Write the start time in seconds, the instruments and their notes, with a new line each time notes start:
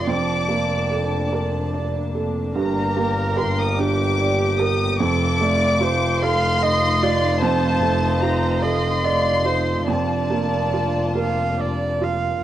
0.06 double bass F1, felt piano F2, string section A#3 D4 A5, viola D5, violin section D6
0.48 felt piano A#3
0.91 felt piano A4
1.32 felt piano A#4
1.74 felt piano D5
2.15 felt piano A4
2.55 double bass G1, felt piano G2, string section G4, viola A#4, violin section A#5
2.96 felt piano A#3
3.37 felt piano A#4, violin section C6
3.60 violin section D#6
3.78 felt piano D4, viola G4, violin section D6
4.19 felt piano D5
4.59 felt piano A#4, violin section D#6
5.00 double bass F1, felt piano F2, string section A3 D#4 F4, viola A4, violin section D6
5.41 felt piano A3, viola D5
5.81 felt piano F4, viola C5
6.21 felt piano A4, viola F5, violin section C6
6.63 viola D#5, felt piano D#5
7.03 felt piano F4, viola D5
7.41 felt piano F2, viola C5, violin section A5
7.83 felt piano A3
8.22 felt piano F4, violin section A#5
8.62 felt piano A4, viola D#5, violin section C6
9.04 viola D5, felt piano D#5
9.45 felt piano F4, viola C5
9.87 double bass F1, felt piano F2, string section A#3 D4 F4, viola D5, violin section A5
10.30 felt piano A#3
10.73 felt piano F4
11.15 felt piano A#4, viola F5
11.58 felt piano D5, viola D5
12.01 felt piano F4, viola F5